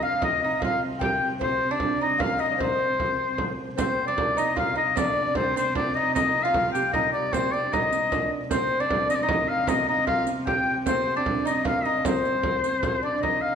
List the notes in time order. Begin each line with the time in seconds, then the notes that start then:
Already playing: C3
0.02 F4 F5, frame drum
0.21 D#4 D#5, frame drum
0.40 D#5
0.44 D#4
0.60 F5, frame drum
0.64 F4
0.99 G4 G5, frame drum
1.21 frame drum
1.39 C4 C5, frame drum
1.71 D4 D5
1.80 frame drum
2.02 D#4 D#5
2.18 F4 F5, frame drum
2.38 D#4 D#5, frame drum
2.52 D4
2.57 C4 C5, frame drum
2.61 C5
2.80 frame drum
3.00 frame drum
3.38 frame drum
3.75 C3 C4 C5, riq, frame drum
4.06 D4 D5
4.18 frame drum
4.35 D#4 D#5, riq
4.56 F4 F5, frame drum
4.75 D#4 D#5, frame drum
4.95 D4 D5, riq, frame drum
5.35 C4 C5, frame drum
5.56 C4 C5, riq
5.75 D4 D5, frame drum
5.95 D#4 D#5, frame drum
6.14 D#4 D#5, riq, frame drum
6.43 F4 F5
6.54 frame drum
6.72 G4 G5, riq
6.93 D#4 D#5, frame drum
7.12 D5, frame drum
7.33 C4 C5, riq, frame drum
7.52 D4 D5, frame drum
7.72 D#4 D#5, riq, frame drum
7.93 riq
8.12 D4, riq, frame drum
8.50 C3 C4 C5, riq, frame drum
8.80 D4 D5
8.90 frame drum
9.10 D#5, riq
9.15 D5
9.23 D#4 D#5
9.29 frame drum
9.48 F5, frame drum
9.67 D#4 D#5, riq, frame drum
9.88 D#4 D#5
10.07 F4 F5, frame drum
10.27 riq
10.47 G4 G5, frame drum
10.67 frame drum
10.86 C4 C5, riq, frame drum
11.16 D4 D5
11.26 frame drum
11.45 D#4 D#5, riq
11.65 F4 F5, frame drum
11.85 D#4 D#5, frame drum
11.97 D4
12.05 C4 C5, riq, frame drum
12.25 riq
12.43 frame drum
12.64 riq
12.83 riq, frame drum
13.02 D4 D5, frame drum
13.22 C3 D#4 D#5, frame drum
13.41 F5, frame drum